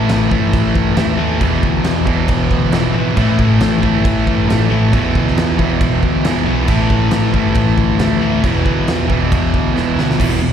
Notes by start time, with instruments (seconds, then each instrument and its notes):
Already playing: distorted electric guitar A2 E3 A3
0.09 picked electric bass A1, snare, crash
0.29 picked electric bass G1, distorted electric guitar A2 E3 A3, kick
0.53 picked electric bass A1, kick, crash
0.75 picked electric bass G1, kick
0.95 picked electric bass D#2, distorted electric guitar A2 E3 A3, snare, crash
1.17 distorted electric guitar A2 E3 A3
1.39 picked electric bass E1, distorted electric guitar E2 B2 E3, kick, crash
1.63 picked electric bass D2, kick
1.84 picked electric bass E2, snare, crash
2.05 picked electric bass E1, distorted electric guitar E2 B2 E3, kick
2.28 picked electric bass E1, kick, crash
2.51 picked electric bass D2, kick
2.71 picked electric bass E1, distorted electric guitar E2 B2 E3, snare, crash
2.93 picked electric bass G#1, distorted electric guitar E2 B2 E3
3.16 picked electric bass A1, distorted electric guitar A2 E3 A3, kick, crash
3.39 picked electric bass A1, kick
3.60 picked electric bass A1, snare, crash
3.81 picked electric bass G1, distorted electric guitar A2 E3 A3, kick
4.05 picked electric bass A1, kick, crash
4.27 picked electric bass G1, kick
4.48 picked electric bass A1, distorted electric guitar A2 E3 A3, snare, crash
4.69 distorted electric guitar A2 E3 A3
4.91 picked electric bass E1, distorted electric guitar E2 B2 E3, kick, crash
5.15 picked electric bass D2, kick
5.28 snare
5.37 picked electric bass E2, snare, crash
5.58 picked electric bass E1, distorted electric guitar E2 B2 E3, kick
5.81 picked electric bass E1, kick, crash
6.03 picked electric bass D2, kick
6.24 picked electric bass E1, distorted electric guitar E2 B2 E3, snare, crash
6.46 picked electric bass B1, distorted electric guitar E2 B2 E3
6.67 picked electric bass A1, distorted electric guitar A2 E3 A3, kick, crash
6.90 picked electric bass A1, kick
7.11 picked electric bass A1, snare, crash
7.34 picked electric bass G1, distorted electric guitar A2 E3 A3, kick
7.55 picked electric bass A1, kick, crash
7.77 picked electric bass G1, kick
7.99 picked electric bass D2, distorted electric guitar A2 E3 A3, snare, crash
8.21 distorted electric guitar A2 E3 A3
8.42 picked electric bass E1, distorted electric guitar E2 B2 E3, kick, crash
8.66 picked electric bass D2, kick
8.86 picked electric bass E2, snare, crash
9.08 picked electric bass E1, distorted electric guitar E2 B2 E3, kick
9.32 picked electric bass E1, kick, crash
9.54 picked electric bass D2, kick
9.74 picked electric bass E1, distorted electric guitar E2 B2 E3, snare
9.96 picked electric bass D2, distorted electric guitar E2 B2 E3, snare
10.11 snare
10.18 picked electric bass E1, distorted electric guitar E2 B2 E3, kick, crash
10.39 picked electric bass E1, distorted electric guitar E2 B2